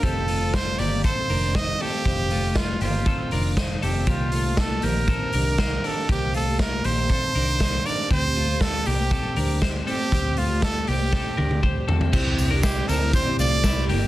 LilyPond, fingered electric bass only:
\new Staff \with { instrumentName = "Fingered electric bass" } { \clef bass \time 4/4 \key d \phrygian \tempo 4 = 119 f,,4. g,,8. r16 f,,4 r8 | f,,4. g,,8. r16 f,,4 f,,8 | c,4. bes,,8. r16 c,4 r8 | c,4. bes,,8. r16 c,4 r8 |
d,4. c,8. r16 d,4 r8 | d,4. c,8. r16 d,4 r8 | \key c \mixolydian c,8 c,4 d,8. r16 c,4 g,,8 | }